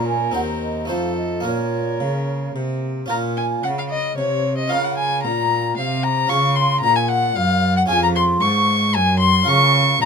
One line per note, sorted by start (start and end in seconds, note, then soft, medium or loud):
0.00 0.31 A#2 medium
0.00 0.35 A#2 medium
0.00 0.31 A#3 soft
0.00 0.32 C#4 soft
0.00 0.89 A#4 medium
0.00 0.33 C#5 soft
0.08 0.35 G#5 medium
0.31 0.86 C4 medium
0.31 0.86 D#4 soft
0.31 0.87 C5 soft
0.31 0.41 F#5 medium
0.36 0.91 D#2 medium
0.36 0.86 D#2 soft
0.63 0.89 D#5 medium
0.85 1.40 A3 soft
0.85 1.41 D#4 soft
0.85 1.42 C5 soft
0.89 1.44 F2 medium
0.89 1.40 F2 medium
0.89 1.46 A4 medium
0.89 1.16 F5 medium
1.17 1.44 D#5 medium
1.40 2.02 A#2 medium
1.40 3.04 A#3 soft
1.40 3.05 C#4 soft
1.40 3.05 A#4 soft
1.45 1.96 A#2 soft
1.45 2.82 A#4 medium
1.45 2.53 C#5 medium
2.00 2.54 C#3 medium
2.00 2.51 C#3 medium
2.55 3.09 C3 medium
2.55 3.06 C3 soft
3.06 3.60 A#2 medium
3.06 4.65 C#4 soft
3.06 4.66 F4 soft
3.06 4.67 A#4 soft
3.06 3.16 A#5 medium
3.06 3.18 A#5 medium
3.11 3.60 A#2 medium
3.37 3.45 G#5 medium
3.37 3.66 G#5 medium
3.63 4.17 C#3 medium
3.63 4.14 C#3 medium
3.63 3.69 F#5 medium
3.63 3.79 F#5 medium
3.78 3.93 F5 medium
3.78 3.83 F5 medium
3.90 4.17 D#5 medium
3.90 4.20 D#5 medium
4.18 4.73 C3 medium
4.18 4.67 C3 medium
4.18 4.57 C#5 medium
4.58 4.71 D#5 medium
4.58 4.73 D#5 medium
4.68 5.26 C#3 medium
4.68 6.26 C#4 soft
4.68 6.27 F4 soft
4.68 6.28 A#4 soft
4.68 4.86 F5 medium
4.68 4.84 F5 medium
4.72 5.21 C#3 medium
4.84 4.97 F#5 medium
4.84 4.91 F#5 medium
4.98 5.24 G#5 medium
4.98 5.23 G#5 medium
5.23 5.78 A#2 medium
5.23 5.75 A#2 medium
5.23 5.77 A#5 loud
5.23 5.78 A#5 medium
5.77 6.31 C3 medium
5.77 6.28 C3 medium
5.77 6.05 F5 medium
5.77 5.85 F5 medium
6.04 6.31 A#5 loud
6.04 6.12 A#5 medium
6.27 7.84 C#4 medium
6.27 7.85 F4 medium
6.27 7.85 G#4 medium
6.27 6.58 C#6 loud
6.31 6.83 C#3 medium
6.31 6.81 C#3 medium
6.31 6.58 C#6 loud
6.56 6.80 C6 medium
6.56 6.84 C6 medium
6.81 7.33 A#2 medium
6.81 7.36 A#2 medium
6.81 6.97 A#5 loud
6.81 6.99 A#5 loud
6.96 7.10 G#5 medium
7.09 7.37 F#5 loud
7.09 7.38 F#5 medium
7.36 7.86 F#2 medium
7.36 7.89 F#2 medium
7.36 7.76 F5 loud
7.36 7.78 F5 medium
7.76 7.90 F#5 medium
7.76 7.82 F#5 medium
7.86 9.42 C#4 medium
7.86 9.43 F4 medium
7.86 9.44 G#4 medium
7.86 8.02 G#5 loud
7.90 8.39 F2 medium
7.90 8.42 F2 medium
8.02 8.08 A#5 medium
8.02 8.09 A#5 medium
8.16 8.24 C6 medium
8.16 8.44 C6 loud
8.41 8.91 G#2 medium
8.41 8.97 G#2 medium
8.41 8.96 C#6 loud
8.41 8.94 C#6 loud
8.95 9.44 F#2 medium
8.95 9.47 F#2 medium
8.95 9.20 G#5 medium
8.95 9.19 G#5 loud
9.20 9.50 C6 loud
9.43 10.05 C#4 medium
9.43 10.05 F4 medium
9.43 10.05 A#4 medium
9.48 9.97 C#3 medium
9.48 9.98 C#3 loud
9.48 10.01 C#6 loud
9.48 9.78 C#6 loud
10.01 10.05 A#2 medium
10.01 10.05 A#5 loud